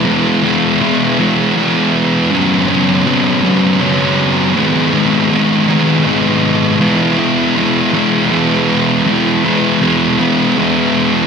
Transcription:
\new Staff \with { instrumentName = "Distorted electric guitar" } { \clef bass \time 6/8 \key e \major \tempo 4. = 53 <e gis b e'>8 <e gis b e'>8 <e gis b e'>8 <e gis b e'>8 <e gis b e'>4 | <fis, cis fis b cis'>8 <fis, cis fis b cis'>8 <fis, cis fis b cis'>8 <fis, cis fis b cis'>8 <fis, cis fis b cis'>4 | <gis, dis gis b dis'>8 <gis, dis gis b dis'>8 <gis, dis gis b dis'>8 <gis, dis gis b dis'>8 <gis, dis gis b dis'>4 | <e gis b e'>8 <e gis b e'>8 <e gis b e'>8 <e gis b e'>8 <e gis b e'>4 |
<e gis b e'>8 <e gis b e'>8 <e gis b e'>8 <e gis b e'>8 <e gis b e'>4 | }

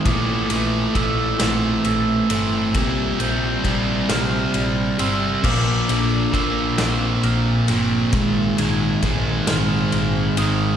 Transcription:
<<
  \new Staff \with { instrumentName = "Glockenspiel" } { \time 6/8 \key bes \lydian \tempo 4. = 45 d'''4 e'''4 e'''4 | r8 g'''4 f'''4 e'''8 | d'''4 e'''4 f'''4 | r8 aes'''4 f'''4 ees'''8 | }
  \new Staff \with { instrumentName = "Clean electric guitar" } { \clef bass \time 6/8 \key bes \lydian bes,8 e8 a8 c'8 a8 c'8 | bes,8 f8 g8 c'8 g8 c'8 | bes,8 d8 bes8 c'8 bes8 c'8 | bes,8 ees8 aes8 c'8 aes8 c'8 | }
  \new Staff \with { instrumentName = "Distorted electric guitar" } { \clef bass \time 6/8 \key bes \lydian <a, e a>8 <a, e a>8 <a, e a>8 <a, e a>4 <a, e a>8 | <c g c'>8 <c g c'>8 <c g c'>8 <c g c'>4 <c g c'>8 | <bes, f bes>8 <bes, f bes>8 <bes, f bes>8 <bes, f bes>4 <bes, f bes>8 | <aes, ees aes>8 <aes, ees aes>8 <aes, ees aes>8 <aes, ees aes>4 <aes, ees aes>8 | }
  \new Staff \with { instrumentName = "Fingered electric bass" } { \clef bass \time 6/8 \key bes \lydian bes,,8 bes,,8 bes,,8 bes,,8 bes,,8 g,,8 | bes,,8 bes,,8 bes,,8 bes,,8 bes,,8 g,,8 | bes,,8 bes,,8 bes,,8 bes,,8 bes,,8 g,,8 | bes,,8 bes,,8 bes,,8 bes,,8 bes,,8 aes,,8 | }
  \new DrumStaff \with { instrumentName = "Drums" } \drummode { \time 6/8 <bd cymr>8 cymr8 <bd cymr>8 <cymr sn>8 cymr8 cymr8 | <bd cymr>8 cymr8 <bd cymr>8 <cymr sn>8 cymr8 cymr8 | <cymc bd>8 cymr8 <bd cymr>8 <cymr sn>8 cymr8 cymr8 | <bd cymr>8 cymr8 <bd cymr>8 <cymr sn>8 cymr8 cymr8 | }
>>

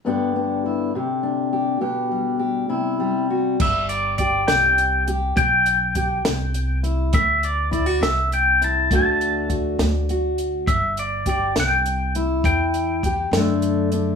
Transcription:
<<
  \new Staff \with { instrumentName = "Pedal steel guitar" } { \time 6/8 \key g \major \tempo 4. = 68 r2. | r2. | e''8 d''8 d''8 g''4 r8 | g''2~ g''8 r8 |
e''8 d''8 d''8 e''8 g''8 a''8 | a''4 r2 | e''8 d''8 d''8 g''4 r8 | g''4. r4. | }
  \new Staff \with { instrumentName = "Steel-string acoustic guitar" } { \time 6/8 \key g \major << { <d b d' g'>8 b8 e'8 g'8 d'8 g'8 | g'8 g8 g'8 e'8 g8 fis'8 | r4 g'8 r4 g'8 | r4 g'8 r4 e'8 |
r4 e'16 fis'16 r4 e'8 | <a d' fis'>4 fis'4 fis'4 | r4 g'8 r4 e'8~ | e'4 g'8 <d a d'>4 d'8 | } \\ { g,4. c4. | b,4. c4. | g,4 r8 c4 r8 | b,4 r8 c4 r8 |
d4 r8 c4 r8 | d4 r8 a4 r8 | g,4 r8 c4 r8 | e,4 r8 fis,4 r8 | } >> }
  \new Staff \with { instrumentName = "Upright bass" } { \clef bass \time 6/8 \key g \major r2. | r2. | g,,4. c,4. | b,,4. c,4. |
d,4. c,4. | d,4. d,4. | g,,4. c,4. | e,4. fis,4. | }
  \new DrumStaff \with { instrumentName = "Drums" } \drummode { \time 6/8 r4. r4. | r4. r4. | <cymc bd>8 hh8 <hh bd>8 <hh sn>8 hh8 hh8 | <hh bd>8 hh8 <hh bd>8 <hh sn>8 hh8 hh8 |
<hh bd>8 hh8 <hh bd>8 <hh sn>8 hh8 hh8 | <hh bd>8 hh8 <hh bd>8 <hh sn>8 hh8 hh8 | <hh bd>8 hh8 <hh bd>8 <hh sn>8 hh8 hh8 | <hh bd>8 hh8 <hh bd>8 <hh sn>8 hh8 hh8 | }
>>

